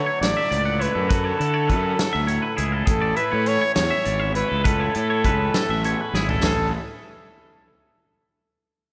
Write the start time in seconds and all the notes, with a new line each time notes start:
Already playing: D3 F#3 A3 E4 F#4 C#5
0.06 C#5
0.21 A1 D5, snare, closed hi-hat
0.37 E5
0.51 C#2 A2 D5, closed hi-hat
0.65 F#5
0.79 E4 B4 C#5, closed hi-hat
0.95 F#2 A4
1.08 D3 F#4 A4 B4, kick, closed hi-hat
1.24 C#5
1.39 D3 E4 A4, closed hi-hat
1.54 C#5
1.67 F#2 F#3 C#4 B4, kick, closed hi-hat
1.98 A4, snare, closed hi-hat
2.13 D2 E5
2.27 A2 C#5, closed hi-hat
2.42 B4
2.57 C#2 E4 G#4, closed hi-hat
2.72 A4
2.85 A1 A2 G#4 A4, kick, closed hi-hat
3.02 D5
3.15 E4 B4 E5, closed hi-hat
3.32 A2 C#5
3.46 E3 C#4 C#5, closed hi-hat
3.61 C#5
3.75 E2 C#5, snare, closed hi-hat
3.91 E5
4.05 G#1 E2 D5, closed hi-hat
4.20 E5
4.35 E4 B4 C#5, closed hi-hat
4.49 C#2 A4
4.64 A2 C#4 A4 B4, kick, closed hi-hat
4.80 E4 C#5
4.95 A2 E4 A4, closed hi-hat
5.10 C#5
5.24 C#2 E3 C#4 B4, kick, closed hi-hat
5.54 A4, snare, closed hi-hat
5.69 A1 E5
5.84 E2 C#5, closed hi-hat
6.01 B4
6.13 G#1 E4 G#4, snare
6.29 A4, floor tom
6.42 A1 A2 E3 C#4 E4 A4, snare, floor tom, splash
6.47 G#4